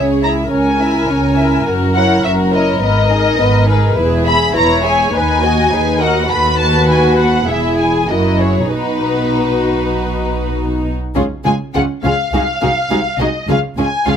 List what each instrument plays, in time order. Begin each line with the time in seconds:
Already playing: double bass section C#2, cello section C#3, violin section C#4 C#5, viola section G#4
0.23 violin section E4 E5 A#5
0.51 double bass section C#2, cello section C#3, violin section C#4 C#5 G#5, viola section A#4
0.80 violin section E4 E5
1.09 double bass section C#2, cello section C#3, violin section C#4 C#5
1.38 violin section E4 E5
1.66 double bass section F#1, cello section F#2, violin section F#4 A#4
1.95 violin section E4 C#5 F#5
2.24 double bass section F#1, cello section F#2, violin section F#4 A#4 E5
2.53 violin section E4 C#5 D#5
2.81 double bass section G#1, cello section G#2, violin section B3 B4 D#5
3.10 violin section D#4 G#4
3.38 double bass section G#1, cello section G#2, violin section B3 B4
3.67 violin section D#4 G#4 B4
3.97 double bass section E1, cello section E2, violin section E4 B4, viola section G#4
4.26 violin section G#4 E5 B5
4.54 double bass section E1, cello section E2, violin section E4 B4 A#5, viola section C#5
4.83 violin section G#4 E5 G#5
5.13 double bass section D#2, cello section D#2, violin section D#4 B4 G#5, viola section B4
5.42 violin section F#4 D#5, viola section F#4
5.71 cello section D#2, double bass section D#2, violin section D#4 B4, viola section G#4
6.01 violin section F#4 D#5 F#5, viola section A#4
6.30 cello section D#2, double bass section D#2, violin section F#4 A4 B5, viola section B4
6.59 violin section A5
6.89 violin section G#5
7.18 violin section F#5
7.47 double bass section E1, cello section E2, violin section E4 G#4 E5, viola section G#4
7.78 violin section G#5
8.08 double bass section F#1, cello section F#2, violin section E4 A#4 D#5, viola section F#4
8.39 violin section G#4 C#5
8.70 double bass section B1, cello section B2, violin section D#4 F#4 B4, viola section D#4
11.15 double bass section C#2, cello section C#3, viola section G#3 C#4, violin section F4 G#4
11.44 double bass section C#2, cello section C#3, viola section G#3 C#4, violin section F4 G#4 G#5
11.74 double bass section C#2, cello section C#3, viola section G#3 C#4, violin section F4 G#4 F#5
12.03 double bass section C#2, cello section C#3, viola section G#3 C#4, violin section F4 G#4 F5
12.32 double bass section C2, cello section C3, viola section G#3 D#4, violin section F#4 G#4 F5
12.61 double bass section C2, cello section C3, viola section G#3 D#4, violin section F#4 G#4
12.90 double bass section C2, cello section C3, viola section G#3 D#4, violin section F#4 G#4
13.18 double bass section C2, cello section C3, viola section G#3 D#4, violin section F#4 G#4 D#5
13.47 double bass section C#2, cello section C#3, viola section G#3 C#4, violin section F4 G#4 F5
13.76 double bass section C#2, cello section C#3, viola section G#3 C#4, violin section F4 G#4 G#5
14.06 double bass section C#2, cello section C#3, viola section G#3 C#4, violin section F4 G#4 F5